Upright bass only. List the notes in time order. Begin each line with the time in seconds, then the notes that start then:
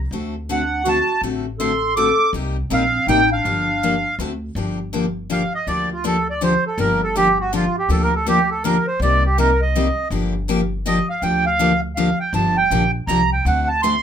0.11 D2
1.22 A1
2.33 C2
2.70 A#1
3.07 A1
3.45 G1
4.19 D2
4.55 G1
5.67 D2
6.78 G1
7.89 D2
9.00 C2
10.10 G1
11.22 D2
12.33 G1
12.71 A#1
13.07 C2
13.45 D2